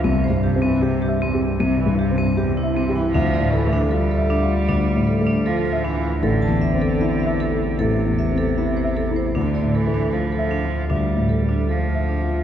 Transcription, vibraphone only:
X:1
M:4/4
L:1/16
Q:1/4=77
K:Dm
V:1 name="Vibraphone"
C c G C G G C z C z G C G E C E | D d A D A A D z D z A D A F D F | A a e A e e A z A z e A e c A c | D d A D A A D z D z A D A F D F |]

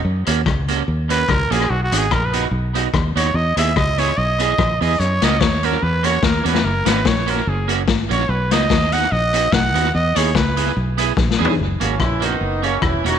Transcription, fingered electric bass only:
X:1
M:4/4
L:1/8
Q:"Swing" 1/4=146
K:F#mix
V:1 name="Fingered electric bass" clef=bass
F,, D,, C,,2 D,,2 C,, A,,, | B,,, G,,, A,,,2 B,,,2 D,, D,, | E,, D,, C,,2 B,,,2 A,,, E,, | F,, C,, D,,2 E,,2 D,, E,, |
F,,, G,,, A,,,2 F,,,2 G,,, A,,, | B,,, C,, D,,2 A,,,2 B,,, D,, | E,, D,, C,,2 B,,,2 A,,, E,, | F,,, G,,, A,,,2 F,,,2 E,,, E,,, |]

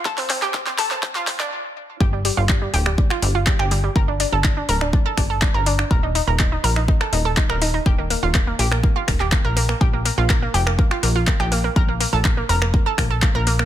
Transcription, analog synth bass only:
X:1
M:4/4
L:1/16
Q:1/4=123
K:Gm
V:1 name="Analog synth bass" clef=bass
F,,,2 z F,,,2 z C,,2 z2 F,,,2 z4 | G,,,2 z G,,,2 z D,,,2 z2 G,,,2 z G,,,2 z | G,,,2 z G,,,2 z D,,,2 z2 G,,,2 z G,,,2 z | E,,,2 z E,,,2 z B,,,2 z2 E,,,2 z E,,,2 z |
E,,,2 z E,,,2 z B,,,2 z2 E,,,2 z B,,,2 z | B,,,2 z B,,,2 z F,,,2 z2 B,,,2 z B,,,2 z | B,,,2 z B,,,2 z F,,,2 z2 B,,,2 z B,,,2 z |]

